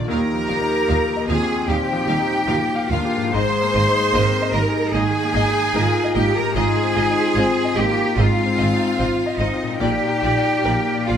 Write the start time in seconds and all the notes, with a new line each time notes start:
Already playing: D#3 F3 A#3 D4 F4 D5
0.05 D#2 F4 G4 A#4 A#5
0.10 D#2 G3 D#4 F5 A#5
0.34 F3
0.48 D#2 G3 D#4 F5
0.61 D#4
0.88 D#2 G3 A#3 D#4 F4 F5
1.16 D#5
1.28 D#2 F3 C4 D#4 F4 G#4 F5 G#5
1.42 G4
1.67 D#2 A#2 G3 D#4 G4 F5 G5
1.93 F3
2.07 D#2 G3 D#4 F5
2.20 D#4
2.47 D#2 G3 A#3 D#4 F4 F5
2.75 F5
2.90 D#2 D#3 G3 A#3 D4 F4 F5
3.05 G4
3.16 G#2
3.21 A#3
3.26 D#4
3.30 G#2 G#3 D#4 C5 C6
3.34 G#1 G#3 A#3 G#4 D#5 C6
3.61 A#3
3.74 G#1 A#3 D#4 D#5
3.87 D#4
4.13 G#1 A#3 C4 D#4 A#4 D#5
4.41 D#5
4.53 G#1 A#3 D#4 G4 A#4 D#5 A#5
4.69 G#4
4.93 G#1 D#3 A#3 D#4 G#4 D#5 G#5
5.23 A#3
5.34 G#1 A#3 D#4 D#5
5.48 D#4
5.75 G#1 A#3 D#4 F4 A#4 D#5
6.04 D#5
6.15 G#1 A#3 D#4 G4 D#5 G5
6.31 G#4
6.35 G#2 G4 A#4 A#5
6.43 C4
6.47 D#4
6.52 C4 F4 G#4 G#5
6.56 G#1 G#2 D#4 D#5 G#5
6.83 C4
6.95 G#1 C4 D#4 F4 D#5
7.11 D#4
7.36 G#1 C4 F4 C5 D#5
7.64 D#5
7.76 G#1 A#3 C4 D#4 F4 G4 D#5 G5
7.91 F4
8.16 G#1 G#2 G#3 C4 F4 D#5 F5
8.45 C4
8.58 G#1 C4 F4 D#5
8.72 D#4
8.99 G#1 C4 F4 C5 D#5
9.26 D#5
9.37 G#1 C4 D#4 F4 D#5
9.53 F4
9.63 A#2
9.67 A#3
9.72 D5
9.76 A#2 D#4 F4 G5
9.80 A#1 A#3 F4 G4 D5 G5
10.08 A#3
10.22 A#1 A#3 F4 D5
10.37 D5
10.65 A#1 A#3 F4 A#4 D5
10.94 D5
11.07 A#1 A#3 D4 F4 D5 F5